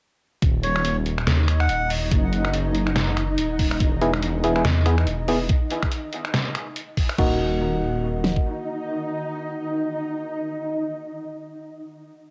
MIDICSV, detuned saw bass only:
0, 0, Header, 1, 2, 480
1, 0, Start_track
1, 0, Tempo, 422535
1, 482, Time_signature, 4, 2, 24, 8
1, 13980, End_track
2, 0, Start_track
2, 0, Title_t, "Detuned saw bass"
2, 0, Program_c, 0, 39
2, 483, Note_on_c, 0, 27, 95
2, 1426, Note_off_c, 0, 27, 0
2, 1443, Note_on_c, 0, 39, 97
2, 1906, Note_off_c, 0, 39, 0
2, 1921, Note_on_c, 0, 27, 98
2, 2385, Note_off_c, 0, 27, 0
2, 2402, Note_on_c, 0, 30, 97
2, 3825, Note_off_c, 0, 30, 0
2, 3842, Note_on_c, 0, 27, 97
2, 4305, Note_off_c, 0, 27, 0
2, 4321, Note_on_c, 0, 28, 101
2, 5265, Note_off_c, 0, 28, 0
2, 5280, Note_on_c, 0, 40, 103
2, 5744, Note_off_c, 0, 40, 0
2, 5761, Note_on_c, 0, 28, 100
2, 6225, Note_off_c, 0, 28, 0
2, 8161, Note_on_c, 0, 27, 96
2, 9556, Note_off_c, 0, 27, 0
2, 13980, End_track
0, 0, End_of_file